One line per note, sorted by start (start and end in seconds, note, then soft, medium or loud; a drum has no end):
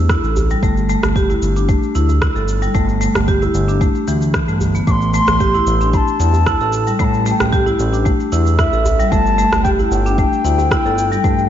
0.00 0.15 E2 medium
0.09 0.23 E4 medium
0.09 kick loud
0.09 cross-stick medium
0.09 djembe tone medium
0.09 cabasa soft
0.24 0.55 A1 medium
0.24 0.49 A4 medium
0.24 cabasa soft
0.36 djembe slap soft
0.36 djembe bass loud
0.36 cabasa medium
0.50 0.62 G3 medium
0.50 cabasa soft
0.63 0.95 G1 loud
0.63 0.76 A3 loud
0.63 kick loud
0.63 cabasa soft
0.77 djembe tone soft
0.77 cabasa soft
0.89 1.03 A3 loud
0.89 cabasa medium
1.03 1.35 G1 medium
1.03 cross-stick medium
1.03 djembe slap medium
1.03 djembe bass medium
1.03 cabasa soft
1.16 1.29 G4 medium
1.16 kick loud
1.16 cabasa soft
1.30 1.42 E4 medium
1.30 djembe bass medium
1.30 cabasa soft
1.42 1.75 G1 loud
1.42 cabasa medium
1.56 1.68 D4 medium
1.56 cabasa soft
1.69 1.82 A3 medium
1.69 kick loud
1.69 djembe slap soft
1.69 cabasa soft
1.83 cabasa soft
1.95 2.28 D2 medium
1.95 2.09 E4 medium
1.95 djembe slap medium
1.95 cabasa medium
2.09 djembe tone medium
2.09 cabasa soft
2.22 2.35 E4 medium
2.22 kick loud
2.22 cross-stick medium
2.22 cabasa soft
2.36 2.68 G1 medium
2.36 2.61 A4 medium
2.36 cabasa soft
2.48 cabasa medium
2.62 2.74 G3 medium
2.62 cabasa soft
2.75 3.07 G1 loud
2.75 2.88 A3 loud
2.75 kick loud
2.75 cabasa soft
2.89 djembe tone soft
2.89 cabasa soft
3.01 3.15 A3 loud
3.01 cabasa medium
3.15 3.47 G1 medium
3.15 cross-stick medium
3.15 djembe slap medium
3.15 djembe bass medium
3.15 cabasa soft
3.28 3.41 G4 loud
3.28 kick loud
3.28 cabasa soft
3.42 3.54 E4 medium
3.42 djembe tone medium
3.42 djembe bass medium
3.42 cabasa soft
3.54 3.87 G1 medium
3.54 cabasa medium
3.68 3.80 D4 medium
3.68 cabasa soft
3.81 3.94 A3 medium
3.81 kick loud
3.81 cabasa soft
3.95 djembe slap soft
3.95 cabasa soft
4.08 4.40 D2 medium
4.08 4.21 E3 medium
4.08 djembe slap medium
4.08 cabasa medium
4.22 cabasa soft
4.34 4.47 E3 medium
4.34 kick loud
4.34 cross-stick medium
4.34 djembe tone medium
4.34 cabasa soft
4.48 4.80 G1 medium
4.48 4.60 A3 medium
4.48 cabasa soft
4.61 djembe slap medium
4.61 djembe bass medium
4.61 cabasa medium
4.75 4.86 B3 medium
4.75 djembe tone soft
4.75 cabasa soft
4.87 5.20 A1 loud
4.87 5.01 A3 medium
4.87 5.12 C6 loud
4.87 4.92 D6 medium
4.87 kick loud
4.87 cabasa soft
5.01 djembe tone soft
5.01 cabasa soft
5.14 5.27 A3 loud
5.14 5.90 C6 loud
5.14 cabasa medium
5.27 5.60 A1 medium
5.27 cross-stick medium
5.27 djembe slap medium
5.27 djembe bass medium
5.27 cabasa soft
5.40 5.54 G4 loud
5.40 kick loud
5.40 cabasa soft
5.54 5.66 E4 medium
5.54 djembe bass medium
5.54 cabasa soft
5.67 5.99 A1 loud
5.67 cabasa medium
5.81 5.93 D4 medium
5.81 cabasa soft
5.93 6.07 A3 medium
5.93 6.96 A5 loud
5.93 5.98 B5 medium
5.93 kick loud
5.93 djembe slap soft
5.93 cabasa soft
6.08 cabasa soft
6.20 6.52 E2 medium
6.20 6.33 E4 medium
6.20 djembe slap medium
6.20 cabasa medium
6.33 djembe tone medium
6.33 cabasa soft
6.46 6.60 E4 medium
6.46 kick loud
6.46 cross-stick medium
6.46 cabasa soft
6.61 6.92 A1 medium
6.61 6.86 A4 medium
6.61 cabasa soft
6.73 cabasa medium
6.87 6.99 G3 medium
6.87 cabasa soft
7.00 7.32 A1 loud
7.00 7.13 A3 loud
7.00 7.05 B5 medium
7.00 kick medium
7.00 cabasa soft
7.04 7.27 A5 medium
7.14 djembe tone soft
7.14 cabasa soft
7.26 7.39 A3 loud
7.26 7.32 A5 medium
7.26 cabasa medium
7.31 7.80 G5 medium
7.40 7.72 A1 medium
7.40 cross-stick medium
7.40 djembe slap medium
7.40 djembe bass medium
7.40 cabasa soft
7.53 7.66 G4 loud
7.53 kick loud
7.53 cabasa soft
7.67 7.79 E4 medium
7.67 djembe bass medium
7.67 cabasa soft
7.79 8.12 A1 loud
7.79 cabasa medium
7.93 8.05 D4 medium
7.93 cabasa soft
8.06 8.19 A3 medium
8.06 kick loud
8.06 cabasa soft
8.20 djembe slap soft
8.20 cabasa soft
8.32 8.65 E2 medium
8.32 8.46 E4 medium
8.32 djembe slap medium
8.32 cabasa medium
8.47 cabasa soft
8.58 8.72 E4 medium
8.58 9.12 E5 medium
8.58 kick loud
8.58 cross-stick medium
8.58 djembe tone medium
8.58 cabasa soft
8.73 9.05 A1 medium
8.73 8.98 A4 medium
8.73 cabasa soft
8.85 djembe slap soft
8.85 djembe bass medium
8.85 cabasa medium
9.00 9.11 G3 loud
9.00 cabasa soft
9.11 9.45 G1 loud
9.11 9.25 A3 loud
9.11 9.63 A5 loud
9.11 kick medium
9.11 cabasa soft
9.26 djembe tone soft
9.26 cabasa soft
9.38 9.52 A3 loud
9.38 cabasa medium
9.52 9.84 G1 medium
9.52 cross-stick medium
9.52 djembe slap medium
9.52 djembe bass medium
9.52 cabasa soft
9.64 9.78 G4 loud
9.64 9.70 G5 medium
9.64 kick medium
9.64 cabasa soft
9.79 9.91 E4 medium
9.79 djembe bass medium
9.79 cabasa soft
9.90 10.24 G1 loud
9.90 11.49 G5 loud
9.90 cabasa medium
10.06 10.18 D4 medium
10.06 cabasa soft
10.18 10.32 A3 medium
10.18 kick medium
10.18 djembe slap soft
10.18 cabasa soft
10.33 cabasa soft
10.44 10.77 D2 medium
10.44 10.58 E4 medium
10.44 djembe slap medium
10.44 cabasa medium
10.58 djembe tone medium
10.58 cabasa soft
10.71 10.85 E4 loud
10.71 kick loud
10.71 cross-stick medium
10.71 cabasa soft
10.85 11.17 G1 medium
10.85 11.11 A4 medium
10.85 cabasa soft
10.98 cabasa medium
11.12 11.24 G3 medium
11.12 cabasa soft
11.24 11.49 G1 loud
11.24 11.38 A3 loud
11.24 kick loud
11.24 cabasa soft
11.39 djembe tone soft
11.39 cabasa soft